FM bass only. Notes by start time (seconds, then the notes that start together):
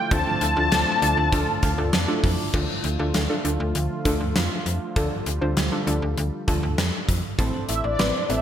0.11 D2
0.41 D2
0.56 D2
0.72 D2
1.02 D2
1.17 D2
1.32 D2
1.63 D2
1.78 D2
1.93 F2
2.24 F2
2.54 D2
2.84 D2
2.99 D2
3.14 D2
3.45 D2
3.60 D2
3.75 D2
4.05 D2
4.20 D2
4.36 F2
4.66 F2
4.96 D2
5.26 D2
5.42 D2
5.57 D2
5.87 D2
6.02 D2
6.17 D2
6.48 D2
6.63 D2
6.78 F2
7.09 F2
7.39 A1
7.69 A1
7.84 A1
7.99 A1
8.29 A1